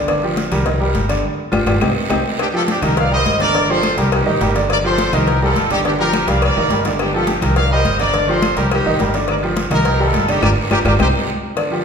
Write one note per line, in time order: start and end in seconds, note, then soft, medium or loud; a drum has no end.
0.00 0.46 G1 medium
0.08 0.20 D3 medium
0.08 0.20 D4 medium
0.08 0.21 D5 medium
0.08 cowbell loud
0.08 high conga soft
0.08 long guiro medium
0.08 claves medium
0.23 0.47 F3 medium
0.23 0.47 F4 medium
0.23 0.47 G4 medium
0.23 high conga soft
0.37 cowbell medium
0.37 high conga loud
0.37 short guiro medium
0.51 0.92 C2 loud
0.51 0.64 G3 medium
0.51 0.64 G4 medium
0.51 0.64 A#4 medium
0.51 cowbell medium
0.51 high conga soft
0.51 low conga medium
0.51 short guiro medium
0.51 claves medium
0.66 0.78 D#3 medium
0.66 0.78 D#4 medium
0.66 0.78 D#5 medium
0.66 cowbell loud
0.66 high conga soft
0.66 low conga medium
0.66 long guiro medium
0.80 1.04 G3 medium
0.80 1.04 G4 medium
0.80 1.04 A#4 medium
0.80 high conga soft
0.94 1.21 G1 medium
0.94 cowbell medium
0.94 high conga medium
0.94 short guiro medium
1.09 1.21 D3 medium
1.09 1.21 D4 medium
1.09 1.21 D5 medium
1.09 cowbell medium
1.09 short guiro medium
1.09 claves medium
1.52 1.63 G1 loud
1.52 1.61 D4 loud
1.52 1.61 F4 loud
1.52 1.61 G4 medium
1.52 cowbell medium
1.52 high conga loud
1.52 long guiro loud
1.52 claves medium
1.66 1.77 G1 loud
1.66 1.76 D4 loud
1.66 1.76 F4 loud
1.66 1.76 G4 loud
1.66 cowbell loud
1.66 high conga loud
1.66 long guiro loud
1.66 claves medium
1.81 1.92 C2 loud
1.81 1.91 C4 loud
1.81 1.91 D#4 medium
1.81 1.91 G4 medium
1.81 cowbell loud
1.81 high conga loud
1.81 long guiro loud
1.81 claves loud
2.10 2.21 C2 medium
2.10 2.19 C4 loud
2.10 2.19 D#4 loud
2.10 2.19 G4 loud
2.10 cowbell medium
2.10 high conga loud
2.10 long guiro loud
2.10 claves medium
2.39 2.47 D4 medium
2.39 2.47 G4 loud
2.39 cowbell loud
2.39 high conga soft
2.39 long guiro medium
2.39 claves medium
2.53 2.77 F3 medium
2.53 2.77 F4 medium
2.53 2.62 F4 medium
2.53 2.77 G4 medium
2.53 2.62 A4 loud
2.53 high conga soft
2.68 2.83 D4 medium
2.68 2.82 G4 loud
2.68 cowbell medium
2.68 high conga loud
2.68 short guiro medium
2.82 3.23 C2 loud
2.82 3.06 D#3 medium
2.82 3.06 D#4 medium
2.82 2.98 G4 medium
2.82 2.98 A#4 medium
2.82 3.06 D#5 medium
2.82 cowbell medium
2.82 high conga soft
2.82 low conga medium
2.82 short guiro medium
2.82 claves medium
2.97 3.12 D5 medium
2.97 3.12 F5 loud
2.97 cowbell loud
2.97 high conga soft
2.97 low conga medium
2.97 long guiro medium
3.11 3.35 G3 medium
3.11 3.35 G4 medium
3.11 3.35 A#4 medium
3.11 3.39 C5 medium
3.11 3.39 D#5 loud
3.11 high conga soft
3.25 3.92 G1 medium
3.25 cowbell medium
3.25 high conga loud
3.25 short guiro medium
3.40 3.52 D3 medium
3.40 3.52 D4 medium
3.40 3.68 A#4 loud
3.40 3.52 D5 medium
3.40 3.68 D5 loud
3.40 cowbell medium
3.40 high conga medium
3.40 short guiro medium
3.40 claves medium
3.54 3.66 D3 medium
3.54 3.66 D4 medium
3.54 3.66 D5 medium
3.54 cowbell loud
3.68 3.93 F3 medium
3.68 3.93 F4 medium
3.68 3.93 G4 medium
3.68 3.99 A4 medium
3.68 3.99 C5 loud
3.68 high conga soft
3.83 cowbell medium
3.83 high conga loud
3.83 short guiro medium
3.83 claves medium
3.97 4.24 C2 loud
3.97 4.21 G3 medium
3.97 4.21 G4 medium
3.97 4.12 G4 medium
3.97 4.21 A#4 medium
3.97 4.12 A#4 medium
3.97 cowbell medium
3.97 high conga soft
3.97 short guiro medium
4.12 4.56 D#4 medium
4.12 4.56 G4 loud
4.12 cowbell loud
4.12 high conga soft
4.12 long guiro medium
4.12 claves medium
4.26 4.40 A1 medium
4.26 4.38 D#3 medium
4.26 4.38 D#4 loud
4.26 4.38 D#5 loud
4.26 high conga soft
4.40 5.07 G1 loud
4.40 4.53 G3 medium
4.40 4.53 G4 medium
4.40 4.53 A#4 medium
4.40 cowbell medium
4.40 high conga medium
4.40 short guiro medium
4.55 4.79 D3 loud
4.55 4.79 D4 medium
4.55 4.79 D5 medium
4.55 cowbell medium
4.55 short guiro medium
4.70 4.78 A#4 medium
4.70 4.78 D5 loud
4.70 cowbell loud
4.70 high conga soft
4.70 claves medium
4.84 5.08 F3 medium
4.84 5.08 F4 medium
4.84 5.08 G4 medium
4.84 5.12 A4 medium
4.84 5.12 C5 loud
4.84 high conga soft
4.98 cowbell medium
4.98 high conga loud
4.98 short guiro medium
5.12 5.53 C2 loud
5.12 5.37 D#3 medium
5.12 5.37 D#4 medium
5.12 5.43 G4 medium
5.12 5.43 A#4 medium
5.12 5.37 D#5 loud
5.12 cowbell medium
5.12 high conga soft
5.12 low conga medium
5.12 short guiro medium
5.12 claves medium
5.27 cowbell loud
5.27 high conga soft
5.27 low conga medium
5.27 long guiro medium
5.41 5.65 G3 medium
5.41 5.70 F4 medium
5.41 5.66 G4 medium
5.41 5.69 A4 medium
5.41 5.66 A#4 medium
5.41 high conga soft
5.56 6.22 G1 medium
5.56 cowbell medium
5.56 high conga medium
5.56 short guiro medium
5.70 5.82 D3 medium
5.70 5.83 D4 medium
5.70 5.79 D#4 medium
5.70 5.78 G4 loud
5.70 5.83 D5 medium
5.70 cowbell medium
5.70 short guiro medium
5.70 claves medium
5.85 5.97 D3 medium
5.85 5.97 D4 medium
5.85 5.93 D4 medium
5.85 5.93 G4 medium
5.85 5.97 D5 medium
5.85 cowbell loud
5.85 high conga soft
5.85 long guiro medium
5.99 6.23 F3 medium
5.99 6.23 F4 medium
5.99 6.23 G4 medium
5.99 6.27 G4 medium
5.99 6.27 A#4 loud
5.99 high conga soft
6.13 cowbell medium
6.13 high conga loud
6.13 short guiro medium
6.13 claves medium
6.27 6.54 C2 loud
6.27 6.51 G3 medium
6.27 6.52 G4 medium
6.27 6.52 A#4 medium
6.27 6.43 D5 medium
6.27 6.43 F5 medium
6.27 cowbell medium
6.27 high conga soft
6.27 short guiro medium
6.42 6.83 A#4 medium
6.42 6.83 D5 loud
6.42 cowbell loud
6.42 high conga soft
6.42 long guiro medium
6.42 claves medium
6.56 6.69 A1 medium
6.56 6.68 D#3 medium
6.56 6.68 D#4 loud
6.56 6.69 D#5 loud
6.56 high conga soft
6.70 7.36 G1 medium
6.70 6.83 G3 medium
6.70 6.83 G4 medium
6.70 6.83 A#4 medium
6.70 cowbell medium
6.70 high conga loud
6.70 short guiro medium
6.85 7.09 D3 medium
6.85 7.09 D4 loud
6.85 7.09 D5 medium
6.85 cowbell medium
6.85 high conga medium
6.85 short guiro medium
6.99 7.14 D4 medium
6.99 7.13 G4 medium
6.99 cowbell loud
6.99 high conga soft
6.99 long guiro medium
6.99 claves medium
7.13 7.38 F3 medium
7.13 7.38 F4 medium
7.13 7.29 F4 medium
7.13 7.38 G4 medium
7.13 7.28 A4 loud
7.13 high conga soft
7.27 7.43 D4 medium
7.27 7.42 G4 medium
7.27 cowbell medium
7.27 high conga loud
7.27 short guiro medium
7.42 7.82 C2 loud
7.42 7.66 D#3 medium
7.42 7.66 D#4 loud
7.42 7.56 G4 medium
7.42 7.56 A#4 medium
7.42 7.66 D#5 medium
7.42 cowbell medium
7.42 high conga soft
7.42 low conga medium
7.42 short guiro medium
7.42 claves medium
7.56 7.71 D5 medium
7.56 7.70 F5 loud
7.56 cowbell loud
7.56 high conga soft
7.56 low conga medium
7.56 long guiro medium
7.71 7.94 G3 medium
7.71 7.95 G4 medium
7.71 7.95 A#4 medium
7.71 7.98 C5 medium
7.71 7.98 D#5 loud
7.71 high conga soft
7.85 8.51 G1 medium
7.85 cowbell medium
7.85 high conga loud
7.85 short guiro medium
7.99 8.11 D3 medium
7.99 8.11 D4 loud
7.99 8.27 A#4 medium
7.99 8.26 D5 loud
7.99 8.12 D5 medium
7.99 cowbell medium
7.99 short guiro medium
7.99 claves medium
8.14 8.26 D3 medium
8.14 8.26 D4 medium
8.14 8.26 D5 medium
8.14 cowbell loud
8.14 high conga soft
8.29 8.52 F3 medium
8.29 8.52 F4 medium
8.29 8.52 G4 medium
8.29 8.58 A4 medium
8.29 8.57 C5 loud
8.29 high conga soft
8.42 cowbell medium
8.42 high conga loud
8.42 short guiro medium
8.42 claves medium
8.56 8.83 C2 loud
8.56 8.81 G3 medium
8.56 8.81 G4 medium
8.56 8.71 G4 medium
8.56 8.71 A#4 medium
8.56 8.81 A#4 medium
8.56 cowbell medium
8.56 high conga soft
8.56 short guiro medium
8.71 9.12 D#4 medium
8.71 9.11 G4 medium
8.71 cowbell loud
8.71 high conga soft
8.71 long guiro medium
8.71 claves medium
8.85 8.98 A1 medium
8.85 8.97 D#3 loud
8.85 8.98 D#4 loud
8.85 8.98 D#5 loud
8.85 high conga soft
8.99 9.65 G1 medium
8.99 9.11 G3 medium
8.99 9.11 G4 medium
8.99 9.12 A#4 medium
8.99 cowbell medium
8.99 high conga loud
8.99 short guiro medium
9.14 9.38 D3 medium
9.14 9.38 D4 medium
9.14 9.38 D5 medium
9.14 cowbell medium
9.14 short guiro medium
9.28 9.36 A#4 medium
9.28 9.36 D5 medium
9.28 cowbell loud
9.28 high conga soft
9.28 long guiro medium
9.28 claves medium
9.43 9.66 F3 medium
9.43 9.66 F4 medium
9.43 9.66 G4 medium
9.43 high conga soft
9.57 cowbell medium
9.57 high conga loud
9.57 short guiro medium
9.71 10.11 C2 loud
9.71 9.95 D#3 medium
9.71 9.95 D#4 loud
9.71 9.99 G4 medium
9.71 9.99 A#4 medium
9.71 9.95 D#5 medium
9.71 cowbell medium
9.71 high conga soft
9.71 low conga medium
9.71 short guiro medium
9.71 claves medium
9.85 cowbell loud
9.85 high conga soft
9.85 long guiro medium
10.00 10.23 G3 medium
10.00 10.29 F4 medium
10.00 10.23 G4 medium
10.00 10.29 A4 medium
10.00 10.24 A#4 medium
10.00 high conga soft
10.13 10.40 G1 loud
10.13 cowbell medium
10.13 high conga loud
10.13 short guiro medium
10.28 10.40 D3 medium
10.28 10.40 D4 medium
10.28 10.43 D#4 medium
10.28 10.43 G4 loud
10.28 10.40 D5 medium
10.28 cowbell medium
10.28 short guiro medium
10.28 claves medium
10.42 10.53 G1 loud
10.42 10.51 D4 medium
10.42 10.51 F4 loud
10.42 10.51 G4 medium
10.42 10.50 G4 medium
10.42 10.50 A#4 medium
10.42 10.50 D5 loud
10.42 cowbell loud
10.42 high conga loud
10.42 long guiro medium
10.42 claves loud
10.71 10.81 G1 loud
10.71 10.80 D4 loud
10.71 10.80 F4 loud
10.71 10.80 G4 loud
10.71 10.79 G4 medium
10.71 10.79 A#4 loud
10.71 10.79 D5 medium
10.71 cowbell loud
10.71 high conga loud
10.71 long guiro medium
10.71 claves loud
10.85 10.96 G1 loud
10.85 10.94 D4 loud
10.85 10.94 F4 loud
10.85 10.94 G4 loud
10.85 10.94 G4 medium
10.85 10.94 A#4 medium
10.85 10.93 D5 medium
10.85 cowbell loud
10.85 high conga loud
10.85 long guiro loud
10.85 claves medium
10.99 11.10 C2 loud
10.99 11.08 C4 medium
10.99 11.08 D#4 loud
10.99 11.08 G4 loud
10.99 11.08 G4 medium
10.99 11.08 A#4 medium
10.99 11.08 C5 loud
10.99 cowbell loud
10.99 high conga loud
10.99 long guiro loud
10.99 claves loud
11.57 11.68 D3 medium
11.57 11.68 D4 medium
11.57 11.69 D5 medium
11.57 cowbell loud
11.57 high conga soft
11.57 long guiro medium
11.57 claves medium
11.71 11.85 F3 medium
11.71 11.85 F4 medium
11.71 11.85 G4 medium
11.71 high conga soft